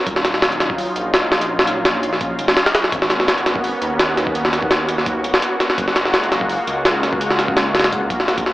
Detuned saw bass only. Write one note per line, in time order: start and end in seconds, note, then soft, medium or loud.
0.07 0.86 D#1 loud
0.96 2.40 A#1 medium
2.39 2.55 F#1 medium
2.92 3.72 G#1 loud
3.81 5.26 D#2 medium
5.24 5.41 B1 medium
5.78 6.58 F#1 loud
6.68 8.12 C#2 medium
8.10 8.26 A#1 medium
8.28 8.53 A#1 medium